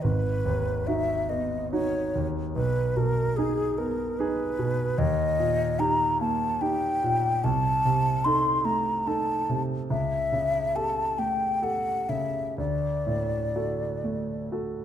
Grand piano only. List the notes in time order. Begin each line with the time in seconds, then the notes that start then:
0.04 G#1
0.45 D#2
0.88 D#4 F#4
1.30 B3
1.73 D#4 F#4
2.15 D#2
2.56 B1
2.97 B2
3.38 D#4 G#4
3.78 B3
4.20 D#4 G#4
4.59 B2
4.98 D#2
5.39 A#2
5.79 D#4 G4
6.21 A#3
6.61 D#4 G4
7.03 A#2
7.44 C2
7.85 C3
8.26 D#4 A4
8.65 A3
9.07 D#4 A4
9.49 C3
9.90 C#2
10.32 C#3
10.75 G4 A4
11.18 A3
11.62 G4 A4
12.09 C#3
12.58 D2
13.07 A2
13.56 F#4 A4
14.04 A3
14.52 F#4 A4